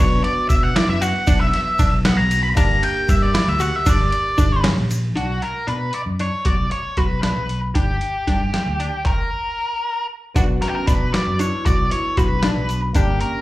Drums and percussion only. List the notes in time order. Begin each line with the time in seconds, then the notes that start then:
0.24 ride
0.50 kick, ride, shaker
0.76 snare, ride, shaker
1.02 ride, shaker
1.27 kick, ride, shaker
1.54 snare, ride
1.79 kick, ride, shaker
2.05 snare, ride, shaker
2.31 ride, shaker
2.57 kick, ride, shaker
2.83 ride
3.09 kick, ride, shaker
3.34 snare, ride, shaker
3.60 ride, shaker
3.86 kick, ride, shaker
4.12 ride, shaker
4.38 kick, ride, shaker
4.64 snare, ride
4.91 ride, shaker
5.17 closed hi-hat
5.42 closed hi-hat
5.68 closed hi-hat
5.93 closed hi-hat
6.19 closed hi-hat
6.45 kick, closed hi-hat
6.71 closed hi-hat
6.97 kick, closed hi-hat
7.23 snare, closed hi-hat
7.49 closed hi-hat
7.75 kick, closed hi-hat
8.01 closed hi-hat
8.27 kick, snare, closed hi-hat
8.54 snare, closed hi-hat
8.80 closed hi-hat
9.05 kick, clap
10.36 kick, closed hi-hat, shaker
10.62 snare, closed hi-hat
10.87 kick, snare, closed hi-hat, shaker
11.14 snare, closed hi-hat, shaker
11.39 closed hi-hat, shaker
11.66 kick, closed hi-hat, shaker
11.91 closed hi-hat
12.17 kick, closed hi-hat, shaker
12.43 snare, closed hi-hat, shaker
12.69 closed hi-hat, shaker
12.95 kick, closed hi-hat, shaker
13.21 closed hi-hat